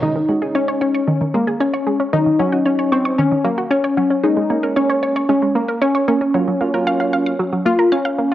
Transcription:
0.02 synth arpeggio sound D#3, synth keys G#3 C#4 D#4, analog polysynth D#4
0.16 synth arpeggio sound D#3
0.29 synth arpeggio sound G#3, synth keys G#3 C#4 F#4
0.42 synth keys G#3 C#4 D#4, synth arpeggio sound G#4
0.55 analog polysynth C#4, synth arpeggio sound C#5
0.68 synth arpeggio sound C#5
0.81 analog polysynth C#4, synth arpeggio sound C#5
0.95 synth arpeggio sound C#5
1.08 synth arpeggio sound D#3
1.21 synth arpeggio sound D#3
1.34 synth arpeggio sound G#3, analog polysynth A#3
1.47 synth arpeggio sound G#4
1.60 analog polysynth C#4, synth arpeggio sound C#5
1.73 synth arpeggio sound C#5
1.87 synth arpeggio sound G#3
2.00 synth arpeggio sound C#4
2.13 synth arpeggio sound D#3, synth keys F#3 C#4 D#4, analog polysynth D#4
2.26 synth arpeggio sound D#3
2.39 synth arpeggio sound F#3, synth keys F#3 C#4 F#4, analog polysynth C#4
2.52 synth keys F#3 C#4 D#4, synth arpeggio sound F#4
2.65 analog polysynth C#4, synth arpeggio sound C#5
2.79 synth arpeggio sound C#5
2.92 analog polysynth C4, synth arpeggio sound C#5
3.05 synth arpeggio sound C#5
3.18 synth arpeggio sound D#3, analog polysynth C#4
3.31 synth arpeggio sound D#3
3.44 synth arpeggio sound F#3, analog polysynth A#3
3.58 synth arpeggio sound F#4
3.71 analog polysynth C#4, synth arpeggio sound C#5
3.84 synth arpeggio sound C#5
3.97 synth arpeggio sound F#3, analog polysynth C#4
4.10 synth arpeggio sound C#4
4.23 synth arpeggio sound G#3, synth keys G#3 A#3 C#4, analog polysynth D#4
4.37 synth arpeggio sound G#3
4.50 synth keys G#3 A#3 C#4, synth arpeggio sound A#3
4.63 synth keys G#3 A#3 C#4, synth arpeggio sound A#4
4.76 analog polysynth C#4, synth arpeggio sound C#5
4.89 synth arpeggio sound C#5
5.03 synth arpeggio sound C#5
5.16 synth arpeggio sound C#5
5.29 synth arpeggio sound G#3, analog polysynth C#4
5.42 synth arpeggio sound G#3
5.55 synth arpeggio sound A#3, analog polysynth A#3
5.68 synth arpeggio sound A#4
5.81 analog polysynth C#4, synth arpeggio sound C#5
5.95 synth arpeggio sound C#5
6.08 synth arpeggio sound A#3, analog polysynth C#4
6.21 synth arpeggio sound C#4
6.34 synth arpeggio sound F#3, synth keys F#3 A#3 F4
6.47 synth arpeggio sound F#3
6.61 synth keys F#3 A#3 F4, synth arpeggio sound A#3
6.74 synth keys F#3 A#3 F4, synth arpeggio sound A#4
6.87 synth arpeggio sound F5
7.00 synth arpeggio sound F5
7.13 synth arpeggio sound F5
7.26 synth arpeggio sound F5
7.39 synth arpeggio sound F#3
7.53 synth arpeggio sound F#3
7.66 synth arpeggio sound A#3, analog polysynth F4
7.79 synth arpeggio sound A#4
7.92 analog polysynth C#4, synth arpeggio sound F5
8.05 synth arpeggio sound F5
8.18 synth arpeggio sound A#3

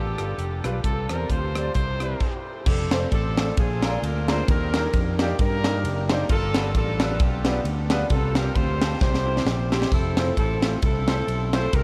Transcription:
Already playing: fingered electric bass A1, horn section B3 D4 F4 G4, trumpet G4
0.18 fingered electric bass G1, grand piano G3 D4 F4 A4, cross-stick, closed hi-hat
0.38 fingered electric bass F1, closed hi-hat
0.64 fingered electric bass B1, grand piano G3 D4 F4 B4, cross-stick, closed hi-hat
0.84 fingered electric bass C2, grand piano C3, horn section C4 F4 A4, trumpet A4, kick, closed hi-hat
1.09 fingered electric bass E2, grand piano G3 C4 F4 C5, trumpet A#4, horn section A#4, cross-stick, closed hi-hat
1.29 fingered electric bass D2, horn section F4 G4 C5, trumpet C5, kick, closed hi-hat
1.55 grand piano G3 C4 F4 D5, cross-stick, closed hi-hat
1.74 fingered electric bass C2, grand piano C3, horn section E4 G4 C5, trumpet C5, kick, closed hi-hat
2.00 grand piano G3 C4 E4 C5, cross-stick, closed hi-hat
2.20 kick, crash
2.66 fingered electric bass F1, horn section C4 D4 A4, kick, crash
2.91 grand piano A3 C4 D4 F4 C5, snare, ride
3.12 fingered electric bass A1, horn section C4 D4 A4, kick, ride
3.38 grand piano A3 C4 D4 F4 A4, snare, ride
3.57 fingered electric bass A#1, grand piano A#2, horn section D4 F4 G#4, kick, ride
3.82 grand piano G#3 A#3 D4 F4 A#4, snare, ride
4.02 fingered electric bass D2, horn section A#4, ride
4.28 grand piano G#3 A#3 D4 F4 A#4, horn section C5, snare, ride
4.48 fingered electric bass D#2, grand piano D#3, horn section D4 G4 A#4, kick, ride
4.74 grand piano G3 A#3 D4 D#4 A#4, snare, ride
4.93 fingered electric bass F2, kick, ride
5.19 grand piano G3 A#3 D4 D#4 G4, snare, ride
5.39 fingered electric bass G2, horn section D4 G4 A#4, kick, ride
5.64 grand piano G3 A#3 D4 D#4 A#4, snare, ride
5.84 fingered electric bass F#1, ride
6.10 grand piano G3 A#3 D4 D#4 C5, snare, ride
6.29 fingered electric bass G1, grand piano G2, horn section D4 F4 A4, kick, ride
6.54 grand piano G3 B3 D4 F4 B4, snare, ride
6.75 fingered electric bass A1, horn section D4 F4 A4, kick, ride
7.00 grand piano G3 B3 D4 F4 B4, snare, ride
7.20 fingered electric bass B1, horn section B3 D4 G4, kick, ride
7.45 grand piano G3 B3 D4 F4 B4, snare, ride
7.64 fingered electric bass D2, ride
7.90 grand piano G3 B3 D4 F4 B4, snare, ride
8.10 fingered electric bass C2, grand piano C3, horn section C4 F4 A4, kick, ride
8.35 grand piano C4 F4 G4, horn section A#4, snare, ride
8.54 fingered electric bass D2, horn section F4 G4 C5, kick, ride
8.81 grand piano C4 F4 A4, snare, ride
9.01 fingered electric bass C2, grand piano C3, horn section E4 G4 C5, kick, snare
9.14 snare
9.26 grand piano C4 E4 G4
9.37 snare
9.45 fingered electric bass A#1, snare
9.72 grand piano C4 E4 G4, snare
9.82 snare
9.92 fingered electric bass F1, horn section C4 E4 A4, kick, splash
10.17 grand piano A3 C4 E4 F4 C5, snare, ride
10.37 fingered electric bass A1, horn section C4 E4 A4, kick, ride
10.62 grand piano A3 C4 E4 F4 C5, snare, ride
10.82 fingered electric bass C2, horn section C4 E4 A4, kick, ride
11.08 grand piano A3 C4 E4 F4 C5, snare, ride
11.27 fingered electric bass B1, ride
11.53 grand piano A3 C4 E4 F4 C5, horn section C5, snare, ride
11.73 fingered electric bass C2, grand piano C3, horn section E4 G4 A#4, kick, ride

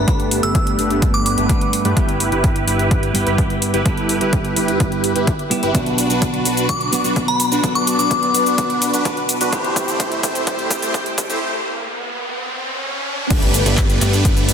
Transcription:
0.07 clean electric guitar G2 A3 B3 D4 A4, supersaw synth A3 B3 D4 G4 B4, kick, closed hi-hat
0.20 closed hi-hat
0.31 open hi-hat
0.43 analog synth bass G1, supersaw synth A3 B3 D4 G4 B4, synth bell E6, closed hi-hat
0.55 kick, closed hi-hat
0.67 closed hi-hat
0.78 analog synth bass G1, supersaw synth A3 B3 D4 G4 B4, open hi-hat
0.91 closed hi-hat
1.02 kick, closed hi-hat
1.14 synth bell D6, closed hi-hat
1.26 synth bell D6, open hi-hat
1.38 analog synth bass G1, supersaw synth A3 B3 D4 G4 B4, closed hi-hat
1.49 clean electric guitar G2 A3 B3 D4 B4, kick, closed hi-hat
1.61 closed hi-hat
1.73 open hi-hat
1.85 analog synth bass G2, supersaw synth A3 B3 D4 G4 B4, closed hi-hat
1.95 analog synth bass G1, clean electric guitar G2 G3 B3 E4 G4, supersaw synth E4 G4 B4, kick, closed hi-hat
2.09 closed hi-hat
2.20 open hi-hat
2.32 analog synth bass G1, supersaw synth E4 G4 B4, closed hi-hat
2.44 kick, closed hi-hat
2.56 closed hi-hat
2.67 analog synth bass G1, supersaw synth E4 G4 B4, open hi-hat
2.79 closed hi-hat
2.91 kick, closed hi-hat
3.03 closed hi-hat
3.13 clean electric guitar G2 G3 B3 E4 G4, open hi-hat
3.27 analog synth bass G1, supersaw synth E4 G4 B4, closed hi-hat
3.38 kick, open hi-hat
3.50 closed hi-hat
3.62 open hi-hat
3.74 analog synth bass G1, supersaw synth E4 G4 B4, closed hi-hat
3.84 analog synth bass G1, clean electric guitar G2 G3 B3 E4 A4, supersaw synth E4 G4 B4, kick, closed hi-hat
3.97 closed hi-hat
4.09 open hi-hat
4.21 analog synth bass G1, supersaw synth E4 G4 B4, closed hi-hat
4.33 kick, closed hi-hat
4.45 closed hi-hat
4.56 analog synth bass G1, supersaw synth E4 G4 B4, open hi-hat
4.68 closed hi-hat
4.80 kick, closed hi-hat
4.92 closed hi-hat
5.04 open hi-hat
5.16 analog synth bass G1, supersaw synth E4 G4 B4, closed hi-hat
5.27 kick, closed hi-hat
5.39 closed hi-hat
5.50 clean electric guitar G3 B3 E4 G4, open hi-hat
5.63 analog synth bass G1, supersaw synth E4 G4 B4, closed hi-hat
5.73 clean electric guitar B2 F#3 B3 D4 F#4, supersaw synth D4 F#4 B4, kick, closed hi-hat, riser, shaker
5.86 closed hi-hat
5.98 open hi-hat, shaker
6.10 analog synth bass B1, supersaw synth D4 F#4 B4, closed hi-hat, shaker
6.22 kick, closed hi-hat, shaker
6.34 closed hi-hat
6.45 analog synth bass B1, supersaw synth D4 F#4 B4, open hi-hat, shaker
6.57 closed hi-hat, shaker
6.69 synth bell D6, kick, closed hi-hat, shaker
6.81 closed hi-hat
6.91 clean electric guitar B2 F#3 B3 D4 F#4, open hi-hat, shaker
7.04 analog synth bass B1, supersaw synth D4 F#4 B4, closed hi-hat, shaker
7.16 kick, open hi-hat, shaker
7.28 synth bell B5, closed hi-hat
7.40 open hi-hat, shaker
7.52 analog synth bass B1, supersaw synth D4 F#4 B4, closed hi-hat, shaker
7.62 analog synth bass B1, clean electric guitar B2 F#3 B3 D4 A4, supersaw synth D4 F#4 B4, kick, closed hi-hat, shaker
7.75 synth bell D6, closed hi-hat
7.87 open hi-hat, shaker
7.99 analog synth bass B1, supersaw synth D4 F#4 B4, synth bell D6, closed hi-hat, shaker
8.11 kick, closed hi-hat, shaker
8.23 closed hi-hat
8.34 analog synth bass B1, supersaw synth D4 F#4 B4, open hi-hat, shaker
8.46 closed hi-hat, shaker
8.58 kick, closed hi-hat, shaker
8.70 closed hi-hat
8.82 open hi-hat, shaker
8.93 analog synth bass B1, supersaw synth D4 F#4 B4, closed hi-hat, shaker
9.05 clean electric guitar B2 F#3 B3 D4 B4, kick, closed hi-hat, shaker
9.17 closed hi-hat
9.29 open hi-hat, shaker
9.41 analog synth bass B1, supersaw synth D4 F#4 B4, closed hi-hat, shaker
9.51 clean electric guitar A2 A3 C4 E4 G4, supersaw synth A3 C4 E4 G4 C5, kick, closed hi-hat, shaker
9.64 closed hi-hat
9.76 kick, open hi-hat, shaker
9.88 analog synth bass A1, supersaw synth A3 C4 E4 G4 C5, closed hi-hat, shaker
10.00 kick, closed hi-hat, shaker
10.12 closed hi-hat
10.23 analog synth bass A1, supersaw synth A3 C4 E4 G4 C5, kick, open hi-hat, shaker
10.35 closed hi-hat, shaker
10.47 kick, closed hi-hat, shaker
10.59 closed hi-hat
10.69 clean electric guitar A2 A3 C4 E4 G4, kick, open hi-hat, shaker
10.82 analog synth bass A1, supersaw synth A3 C4 E4 G4 C5, closed hi-hat, shaker
10.94 kick, open hi-hat, shaker
11.06 closed hi-hat
11.18 kick, open hi-hat, shaker
11.30 analog synth bass A1, supersaw synth A3 C4 E4 G4 C5, closed hi-hat, shaker
13.30 analog synth bass G1, supersaw synth A3 B3 D4 G4 B4, kick, closed hi-hat, crash, impact, shaker
13.42 closed hi-hat
13.54 open hi-hat, shaker
13.66 analog synth bass G1, supersaw synth A3 B3 D4 G4 B4, closed hi-hat, shaker
13.78 kick, clap, closed hi-hat, shaker
13.90 closed hi-hat, shaker
14.01 analog synth bass G1, supersaw synth A3 B3 D4 G4 B4, clap, open hi-hat, shaker
14.13 closed hi-hat, shaker
14.25 kick, closed hi-hat, shaker
14.37 closed hi-hat, shaker
14.49 open hi-hat, shaker

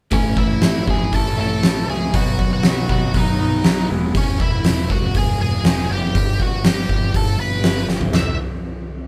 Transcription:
0.11 picked electric bass A1, clean electric guitar A2 E3 A3 C#4 E4, lead electric guitar C#4 C#5, kick, open hi-hat
0.37 picked electric bass A1, clean electric guitar A3 C#4 E4, lead electric guitar E4 E5, kick
0.61 picked electric bass A1, clean electric guitar E3 A3 C#4 E4, snare, open hi-hat
0.87 picked electric bass A1, clean electric guitar A2 E3 A3 C#4 E4, lead electric guitar G#4 G#5, kick
1.12 picked electric bass A1, clean electric guitar E3 A3 C#4 E4, lead electric guitar A4 A5, kick, open hi-hat
1.37 picked electric bass A1, clean electric guitar A2 E3 A3 C#4 E4, lead electric guitar A4 A5
1.63 picked electric bass A1, clean electric guitar E3 A3 C#4 E4, snare, open hi-hat
1.88 picked electric bass C#2, clean electric guitar A3 C#4 E4, lead electric guitar G#4 G#5
2.13 picked electric bass B1, clean electric guitar B2 D#3 F#3 B3 D#4, lead electric guitar F#4 F#5, kick, open hi-hat
2.38 picked electric bass B1, clean electric guitar F#3 B3 D#4, kick
2.53 lead electric guitar F#4 F#5
2.63 picked electric bass B1, clean electric guitar D#3 F#3 B3 D#4, snare, open hi-hat
2.89 picked electric bass B1, clean electric guitar B2 D#3 F#3 B3 D#4, lead electric guitar F#4 F#5, kick
3.14 picked electric bass B1, clean electric guitar D#3 F#3 B3 D#4, lead electric guitar D#4 D#5, kick, open hi-hat
3.38 picked electric bass B1, clean electric guitar B2 D#3 F#3 B3 D#4
3.64 picked electric bass B1, clean electric guitar D#3 F#3 B3 D#4, snare, open hi-hat
3.89 picked electric bass E1, clean electric guitar E3 G#3 B3 E4
4.15 picked electric bass E1, lead electric guitar C#4 C#5, kick, open hi-hat
4.40 picked electric bass E1, lead electric guitar E4 E5, kick
4.64 picked electric bass E1, snare, open hi-hat
4.90 picked electric bass E1, lead electric guitar F#4 F#5, kick
5.14 picked electric bass E1, lead electric guitar G#4 G#5, kick, open hi-hat
5.40 picked electric bass E1, lead electric guitar G#4 G#5
5.64 picked electric bass E1, snare, open hi-hat
5.90 picked electric bass F#1, lead electric guitar G4 G5
6.15 picked electric bass G1, kick, open hi-hat
6.40 picked electric bass G1, lead electric guitar F#4 F#5, kick
6.64 picked electric bass G1, lead electric guitar G4 G5, snare, open hi-hat
6.89 picked electric bass G1, kick
7.14 picked electric bass G1, lead electric guitar A4 A5, kick, open hi-hat
7.38 picked electric bass G1, lead electric guitar B4 B5
7.63 picked electric bass G1, snare, open hi-hat
7.88 picked electric bass G1, snare
8.01 floor tom
8.13 picked electric bass E1, lead electric guitar E5, snare, floor tom, crash

